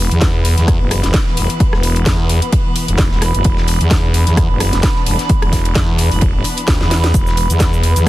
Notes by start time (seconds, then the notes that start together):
Already playing: E3 B3 B4 B5
0.11 E2, closed hi-hat
0.21 kick, snare, closed hi-hat, ride
0.45 open hi-hat, ride
0.57 E2, snare, closed hi-hat
0.68 kick, cross-stick, closed hi-hat, ride
0.81 F#1
0.91 cross-stick, open hi-hat, ride
1.03 E1, snare, closed hi-hat
1.14 kick, snare, closed hi-hat, ride
1.27 snare
1.37 E1, open hi-hat, ride
1.50 closed hi-hat
1.60 kick, closed hi-hat, ride
1.73 E1, cross-stick, snare
1.83 open hi-hat, ride
1.96 closed hi-hat
2.06 E2, kick, snare, closed hi-hat, ride
2.29 open hi-hat, ride
2.42 closed hi-hat
2.53 kick, closed hi-hat, ride
2.76 open hi-hat, ride
2.88 E1, closed hi-hat, ride
2.98 kick, snare, closed hi-hat, ride
3.11 E1, snare
3.21 cross-stick, snare, open hi-hat, ride
3.34 F#1, closed hi-hat
3.44 E1 D4, kick, closed hi-hat, ride
3.57 snare
3.67 open hi-hat, ride
3.81 E2, closed hi-hat
3.91 kick, snare, closed hi-hat, ride
4.14 open hi-hat, ride
4.26 E2, snare, closed hi-hat
4.37 kick, cross-stick, closed hi-hat, ride
4.50 F#1
4.60 cross-stick, open hi-hat, ride
4.73 E1, snare, closed hi-hat
4.83 kick, snare, closed hi-hat, ride
4.96 snare
5.06 E1, open hi-hat, ride
5.19 snare, closed hi-hat
5.29 kick, closed hi-hat, ride
5.42 E1, cross-stick, ride
5.53 kick, snare, open hi-hat
5.65 closed hi-hat, ride
5.75 E2, kick, snare, closed hi-hat, ride
5.98 open hi-hat, ride
6.12 E1, open hi-hat
6.21 kick, closed hi-hat, ride
6.35 G1
6.44 open hi-hat, ride
6.57 closed hi-hat, ride
6.68 D2, kick, snare, closed hi-hat, ride
6.81 E2, snare
6.91 snare, open hi-hat, ride
7.04 snare, closed hi-hat
7.14 E1 B4, kick, closed hi-hat, ride, cabasa
7.27 snare, cabasa
7.37 open hi-hat, ride
7.50 E2, closed hi-hat, cabasa
7.60 kick, snare, closed hi-hat, ride, cabasa
7.73 cabasa
7.83 open hi-hat, ride
7.95 E2, snare, closed hi-hat, cabasa